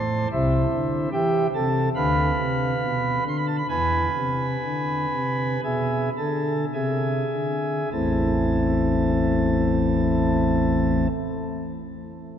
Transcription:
Already playing: A2 C5 A5 C6
0.32 C2 C3 E4 C5 E5
0.73 D3
1.12 E3 G4 E5 G5
1.54 C3 A4 A5
1.95 D2 D3 B4 F5 B5
2.37 C3
2.81 B2
3.24 D3
3.28 C6
3.38 B5
3.47 A5
3.58 B5
3.69 E2 E3 B4 G#5 B5
4.16 C3
4.64 D3
5.13 C3
5.63 B2 G#4 E5 G#5
6.17 D3 A4 A5
6.73 C3 G#4 E5 G#5
7.32 D3
7.92 A1 E2 E3 A3 C4 E4 A5

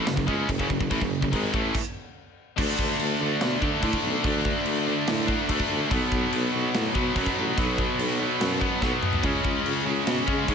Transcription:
0.06 F#1 F#2 C#3, snare, crash
0.17 F#1 F#2 C#3, kick
0.27 C#2 C#3 G#3 C#4, kick
0.47 F#1 F#2 C#3, kick, crash
0.58 F#1 F#2 C#3, kick
0.68 F#1 F#2 C#3, kick
0.79 F#1 F#2 C#3, kick
0.90 A1 A2 E3, kick, crash
1.00 F#1 F#2 C#3, kick
1.21 F#1 F#2 C#3, kick
1.31 G#1 G#2 D#3 G#3, kick, crash
1.52 A1 A2 E3 A3, kick
1.75 kick, crash
2.56 D2 D3 A3 D4, kick, crash
2.79 D2, kick
2.99 D2, crash
3.20 D2 D3 A3 D4
3.41 B2, snare, crash
3.61 D3 A3 D4, kick
3.81 A2 D3 A3 D4, kick, crash
3.93 kick
4.03 B1
4.24 D2 D3 A3 D4, kick, crash
4.45 kick
4.66 D2, crash
4.87 D3 A3 D4
5.07 A2, snare, crash
5.27 D3 A3 D4, kick
5.49 D2 D3 A3 D4, kick, crash
5.60 kick
5.71 D2
5.90 B1 B2 F#3 B3, kick, crash
6.12 B1, kick
6.33 B1, crash
6.52 B1 B2 F#3 B3
6.74 A2, snare, crash
6.94 B2 F#3 B3, kick
7.15 F#2 B2 F#3 B3, kick, crash
7.26 kick
7.38 A1
7.56 B1 B2 F#3 B3, kick, crash
7.78 kick
7.99 B1, crash
8.20 B2 F#3 B3
8.41 F#2, snare, crash
8.61 B2 F#3 B3, kick
8.81 B1 B2 F#3 B3, kick, snare
9.03 mid tom
9.13 floor tom
9.23 C#2 C#3 G#3 C#4, kick, crash
9.45 C#2, kick
9.65 C#2, crash
9.86 C#2 C#3 G#3 C#4
10.07 B2, snare, crash
10.27 C#3 G#3 C#4, kick
10.48 G#2 C#3 G#3 C#4, kick, crash

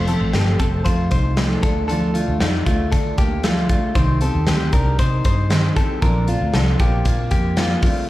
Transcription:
Already playing: F1
0.06 F3 A3 C4 A4, closed hi-hat
0.21 A1
0.32 G1 F3 A3 C4 G4 A4, snare, closed hi-hat
0.59 F1 F3 A3 C4 A4, kick, closed hi-hat
0.85 F2 F4 C5, kick, closed hi-hat
1.11 C2 D#4 C5, kick, closed hi-hat
1.37 F3 A3 C4 A4, snare, closed hi-hat
1.63 D2 A3 D4 F4 A4, kick, closed hi-hat
1.88 D3 F3 A3 D4 F4 A4, closed hi-hat
2.14 A3 D4 F4, closed hi-hat
2.28 D2
2.40 F2 F3 A3 D4 D#4 F4, snare, closed hi-hat
2.66 D2 A3 D4 F4, kick, closed hi-hat
2.92 D3 D4 A4, kick, closed hi-hat
3.18 D2 A#3 G4, kick, closed hi-hat
3.44 F3 A3 D4 F4, snare, closed hi-hat
3.69 A3 D4 F4, kick, closed hi-hat
3.94 C2 C3 D#3 C4 D#4 G4 C5, kick, closed hi-hat
4.21 C4 D#4 G4 A4, closed hi-hat
4.35 D#2
4.46 D2 D#3 C4 D#4 G4, snare, closed hi-hat
4.72 C2 C4 D4 D#4 G4 A#4, kick, closed hi-hat
4.99 C3 D#4 C5, kick, closed hi-hat
5.24 G2 D#4 C5, kick, closed hi-hat
5.49 D#3 C4 D#4 G4, snare, closed hi-hat
5.75 C4 D#4 G4 A4, kick, closed hi-hat
6.01 A#1 A#2 F3 C4 D4 F4 A#4, kick, closed hi-hat
6.27 A3 C4 D4 F4, closed hi-hat
6.41 D2
6.54 C2 F3 C4 D4 F4 A4, snare, closed hi-hat
6.79 A#1 A#3 C4 D4 F4 G4, kick, closed hi-hat
7.05 A#2 A#3 F4, kick, closed hi-hat
7.31 F2 A#3 G4, kick, closed hi-hat
7.57 F3 A#3 C4 D4 F4, snare, closed hi-hat
7.82 A3 C4 D4 F4, kick, open hi-hat

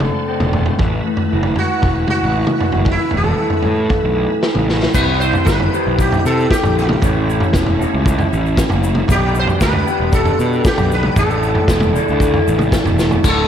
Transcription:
Already playing: A3 C4 A4 D5 F#5 A5 C6
0.00 D3, floor tom, mid tom
0.28 C4
0.40 E1, mid tom
0.53 A3, floor tom
0.66 floor tom
0.79 A1 A2 B4 E5 A5 B5, kick, floor tom
1.07 A3
1.17 floor tom
1.32 F#1 E4
1.43 floor tom
1.56 E3 F#4, floor tom
1.82 E1 A3, kick, floor tom
2.08 E3 F#4, floor tom, mid tom
2.23 A1
2.35 E4
2.47 mid tom
2.60 A3, floor tom
2.72 floor tom
2.76 F#1
2.85 A2, kick, floor tom
2.91 E4
3.11 E1 A3, floor tom
3.17 A4
3.24 floor tom
3.38 E4
3.50 floor tom
3.62 A2 E3, floor tom
3.89 A3, kick, floor tom
4.04 B1
4.15 E3
4.43 E4, snare
4.55 A1, mid tom
4.69 A3, snare
4.83 snare
4.93 C2 C3 G3 C4 E4 G4 B4 E5 G5 B5, kick, floor tom, crash, shaker
4.98 C5
5.20 C5, shaker
5.33 floor tom, shaker
5.45 G1 B4, kick, snare, shaker
5.60 floor tom
5.72 C3 G3 C4 E4 G4 C5, shaker
5.87 B1
5.99 G4, kick, shaker
6.12 floor tom, shaker
6.25 C3 A4, shaker
6.40 shaker
6.50 G4, kick, snare, shaker
6.63 A#1, floor tom, shaker
6.79 E4, shaker
6.89 mid tom
7.01 A1 A2 E3 A3 C#4 E4 A4 C#5 A5 B5, kick, floor tom, shaker
7.30 shaker
7.40 floor tom, shaker
7.53 E1, kick, snare, shaker
7.66 floor tom
7.79 A2 E3 A3 C#4 E4 A4, shaker
7.94 C#2
8.06 kick, shaker
8.19 floor tom, shaker
8.33 A1, shaker
8.46 shaker
8.57 kick, snare, shaker
8.70 F#1, floor tom, shaker
8.84 shaker
8.95 mid tom
9.08 B1 G2 D3 G3 B3 G4 B4 D5 G5, kick, floor tom, shaker
9.12 D4 G4
9.35 shaker
9.39 C5
9.47 floor tom, shaker
9.61 D2 B4, kick, snare, shaker
9.73 floor tom
9.86 G2 D3 G3 B3 D4 G4, shaker
10.00 E1
10.13 A4, kick, shaker
10.25 floor tom, shaker
10.39 B2, shaker
10.53 shaker
10.65 G4, kick, snare, shaker
10.78 B1, floor tom, shaker
10.92 B4, shaker
11.03 mid tom
11.14 A1 A2 E3 A3 D4 E4 E5 A5, kick, floor tom, shaker
11.19 A4
11.30 shaker
11.43 shaker
11.55 floor tom
11.68 E1, kick, snare, shaker
11.80 floor tom, mid tom, shaker
11.93 A2 E3 A3 D4 E4 A4, shaker
12.08 D2, shaker
12.20 kick, shaker
12.34 floor tom
12.48 A1, shaker
12.59 mid tom, shaker
12.72 kick, snare, shaker
12.85 E1, floor tom, shaker
12.99 snare, shaker
13.11 floor tom, shaker
13.22 D1 D2 A2 D3 A3 F#4 D5 F#5 A5 D6, kick, crash, shaker
13.28 A4

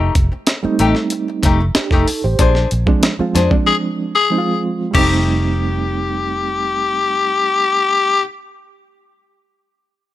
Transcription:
Already playing: A3 D#4 G4
0.15 F1, kick, closed hi-hat
0.32 muted hollow-body jazz guitar stroke
0.47 muted hollow-body jazz guitar stroke, snare, closed hi-hat
0.63 G3 A3 C4 D#4, muted hollow-body jazz guitar stroke, muted fingered electric bass stroke
0.79 A1 A3 D#4 G4, closed hi-hat
0.95 muted hollow-body jazz guitar stroke, snare
1.10 muted hollow-body jazz guitar stroke, closed hi-hat
1.28 muted hollow-body jazz guitar stroke
1.43 F1 A3 D#4 G4, kick, snare, closed hi-hat
1.60 muted hollow-body jazz guitar stroke
1.75 D4 G4, muted fingered electric bass stroke, muted hollow-body jazz guitar stroke, snare, closed hi-hat
1.91 F1 A3 D#4 G4 A4, kick, snare
2.08 open hi-hat
2.24 A1 G4 C5, muted hollow-body jazz guitar stroke
2.39 A#1 D4 G#4 C5, kick, closed hi-hat
2.55 snare
2.71 A#1, closed hi-hat
2.86 F3 G#3 C4 D4, muted hollow-body jazz guitar stroke, kick
3.03 muted hollow-body jazz guitar stroke, snare, closed hi-hat
3.19 F3 G#3 C4 F4, muted hollow-body jazz guitar stroke, muted fingered electric bass stroke
3.35 F2 D4 G#4 C5, snare, closed hi-hat
3.51 F3 G#3 C4 D4, muted hollow-body jazz guitar stroke, kick
3.67 G#4
4.15 G#4
4.30 F3 G#3 C4 D#4
4.38 F4
4.91 F1 G3 A3 G4, kick, crash
4.96 C4 D#4 G4

